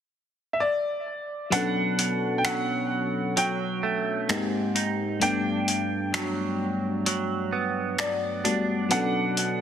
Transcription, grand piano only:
0.53 0.60 E5 medium
0.60 1.55 D5 medium
1.53 2.34 F#5 medium
2.38 2.45 G5 medium
2.45 3.40 F#5 medium
3.38 5.21 G5 medium
5.22 7.95 G5 loud
7.99 8.87 D5 medium
8.91 9.61 F#5 medium

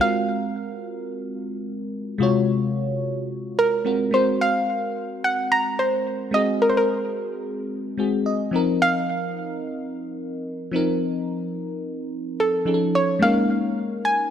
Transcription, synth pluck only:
0.01 1.89 F5 loud
3.59 4.15 A#4 medium
4.14 4.42 C5 medium
4.41 4.92 F5 loud
5.24 5.49 F#5 loud
5.52 5.77 A#5 loud
5.79 6.35 C5 medium
6.34 6.62 D#5 loud
6.62 6.68 A#4 medium
6.69 6.76 C5 medium
6.77 8.22 A#4 medium
8.82 10.70 F5 loud
12.40 12.96 A4 medium
12.95 13.23 C#5 medium
13.22 13.73 F5 loud
14.05 14.30 G#5 loud

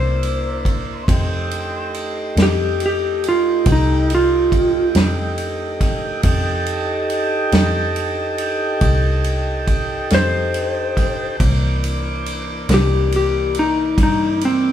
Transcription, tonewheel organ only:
0.00 1.04 A#3 medium
0.00 1.04 D4 medium
0.00 1.04 E4 medium
1.09 6.22 A3 medium
1.09 6.22 D#4 medium
1.09 6.21 G4 medium
6.24 11.36 D#4 medium
6.24 11.37 G4 medium
6.24 11.36 A4 medium
11.40 14.72 E3 medium
11.40 14.72 A#3 medium
11.40 14.72 D5 medium

